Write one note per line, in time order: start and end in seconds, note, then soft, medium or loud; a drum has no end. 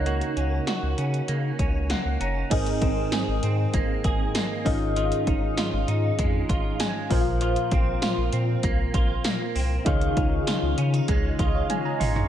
0.00 0.22 C#2 loud
0.00 0.64 C#3 medium
0.00 0.40 D#3 medium
0.00 2.16 D#4 medium
0.00 2.17 A#4 medium
0.00 2.17 C#5 medium
0.00 1.89 F#5 medium
0.06 1.28 A#3 medium
0.06 0.66 F#4 medium
0.06 closed hi-hat medium
0.21 closed hi-hat medium
0.37 0.60 C#2 loud
0.37 0.97 C#4 medium
0.37 closed hi-hat medium
0.67 2.51 F#4 medium
0.67 snare loud
0.67 closed hi-hat medium
0.83 0.94 C#2 medium
0.98 1.21 C#3 medium
0.98 1.58 C#4 medium
0.98 closed hi-hat medium
1.14 closed hi-hat soft
1.28 1.52 C#3 loud
1.28 1.89 A#3 medium
1.28 closed hi-hat medium
1.59 1.94 C#2 medium
1.59 2.19 C#4 medium
1.59 kick medium
1.59 closed hi-hat medium
1.90 2.85 A#3 medium
1.90 2.18 F#5 medium
1.90 snare loud
1.90 closed hi-hat medium
2.05 2.17 C#2 medium
2.20 2.43 F#1 medium
2.20 2.57 C#4 medium
2.20 2.49 A#5 medium
2.20 closed hi-hat medium
2.50 2.74 G#1 loud
2.50 3.39 G#2 medium
2.50 4.65 D#3 medium
2.50 4.61 C4 medium
2.50 4.61 D#4 medium
2.50 4.62 G#4 medium
2.50 3.12 G#4 medium
2.50 4.62 A#4 medium
2.50 4.62 D#5 medium
2.50 kick loud
2.50 closed hi-hat medium
2.50 crash loud
2.66 closed hi-hat medium
2.82 3.05 G#1 loud
2.82 3.42 C4 medium
2.82 kick loud
2.82 closed hi-hat medium
3.12 4.04 G#4 medium
3.12 snare loud
3.12 closed hi-hat medium
3.12 tambourine medium
3.28 3.39 G#1 loud
3.43 3.66 G#2 loud
3.43 4.72 C4 medium
3.43 closed hi-hat medium
3.74 3.97 G#1 loud
3.74 4.34 A#3 medium
3.74 kick medium
3.74 closed hi-hat medium
4.04 4.27 G#1 loud
4.04 4.96 G#4 medium
4.04 kick loud
4.04 closed hi-hat medium
4.35 4.72 A#3 medium
4.35 snare loud
4.35 closed hi-hat medium
4.35 tambourine medium
4.65 5.12 G#1 loud
4.65 5.54 G#2 medium
4.65 4.95 D#3 medium
4.65 7.06 C#4 medium
4.65 7.06 D#4 medium
4.65 7.07 F4 medium
4.65 7.07 G#4 medium
4.65 7.07 D#5 medium
4.65 kick loud
4.65 open hi-hat medium
4.96 7.10 D#3 medium
4.96 5.57 F4 medium
4.96 closed hi-hat medium
5.12 closed hi-hat medium
5.27 5.50 G#1 loud
5.27 5.87 D#4 medium
5.27 kick loud
5.27 closed hi-hat medium
5.57 6.49 F4 medium
5.57 snare loud
5.57 closed hi-hat medium
5.57 tambourine medium
5.73 5.84 G#1 loud
5.88 6.11 G#2 loud
5.88 7.17 D#4 medium
5.88 closed hi-hat medium
6.19 6.42 F2 loud
6.19 6.79 G#3 medium
6.19 kick medium
6.19 closed hi-hat loud
6.49 6.72 G#1 loud
6.49 7.41 F4 medium
6.49 kick medium
6.49 closed hi-hat medium
6.80 7.17 G#3 medium
6.80 7.18 G#5 medium
6.80 snare loud
6.80 closed hi-hat medium
6.80 tambourine medium
7.10 7.56 A#1 loud
7.10 7.99 A#2 medium
7.10 7.41 F3 medium
7.10 9.51 F4 medium
7.10 9.52 A#4 medium
7.10 9.52 C5 medium
7.10 kick loud
7.10 open hi-hat medium
7.21 7.40 F5 medium
7.41 9.86 F3 medium
7.41 8.02 F4 medium
7.41 closed hi-hat medium
7.56 closed hi-hat medium
7.71 7.95 A#1 loud
7.71 8.32 C4 medium
7.71 kick loud
7.71 closed hi-hat medium
8.02 8.94 F4 medium
8.02 snare loud
8.02 closed hi-hat medium
8.02 tambourine medium
8.18 8.29 A#1 medium
8.32 8.56 A#2 loud
8.32 9.54 C4 medium
8.32 closed hi-hat medium
8.63 8.86 C2 loud
8.63 9.24 A#3 medium
8.63 kick medium
8.63 closed hi-hat loud
8.94 9.17 A#1 loud
8.94 9.87 F4 medium
8.94 kick medium
8.94 closed hi-hat medium
9.24 9.92 A#3 medium
9.24 snare loud
9.24 closed hi-hat medium
9.24 tambourine medium
9.55 9.78 C2 medium
9.55 9.92 C4 medium
9.55 open hi-hat medium
9.85 10.09 C#2 loud
9.85 10.74 C#3 medium
9.85 12.28 D#3 medium
9.85 12.26 D#4 medium
9.85 12.27 F4 medium
9.85 10.47 F4 medium
9.85 12.27 G#4 medium
9.85 11.36 C#5 medium
9.85 11.37 F5 medium
9.85 kick loud
9.85 closed hi-hat medium
10.01 closed hi-hat medium
10.17 10.40 C#2 medium
10.17 10.77 D#4 medium
10.17 kick loud
10.17 closed hi-hat medium
10.47 11.39 F4 medium
10.47 snare loud
10.47 closed hi-hat medium
10.47 tambourine medium
10.62 10.74 C#2 loud
10.78 11.01 C#3 loud
10.78 10.93 C#4 medium
10.78 closed hi-hat medium
10.93 11.99 D#4 medium
10.93 closed hi-hat medium
11.08 11.31 C#2 loud
11.08 11.69 G#3 medium
11.08 kick medium
11.08 closed hi-hat loud
11.39 11.62 C#2 loud
11.39 12.28 F4 medium
11.39 11.68 D#5 medium
11.39 kick loud
11.39 closed hi-hat medium
11.55 11.69 C#5 medium
11.55 11.69 F5 medium
11.70 12.28 G#3 medium
11.70 11.85 F5 medium
11.70 11.84 G#5 medium
11.70 closed hi-hat loud
11.70 high tom medium
11.85 12.00 G#5 medium
11.85 12.00 A#5 medium
12.00 12.23 G#1 loud
12.00 12.28 D#4 medium
12.00 12.15 G#5 medium
12.00 12.15 C6 medium
12.00 mid tom medium
12.00 open hi-hat medium
12.15 12.28 A#5 medium
12.15 12.28 C#6 medium
12.15 floor tom loud